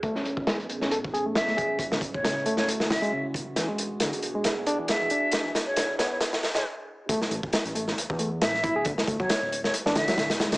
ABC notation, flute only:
X:1
M:4/4
L:1/16
Q:"Swing 16ths" 1/4=136
K:A
V:1 name="Flute"
z12 e4 | z3 c4 c z2 e3 z3 | z12 e4- | e2 z c3 c c z3 c z4 |
z12 e4 | z3 c4 c z2 e3 z3 |]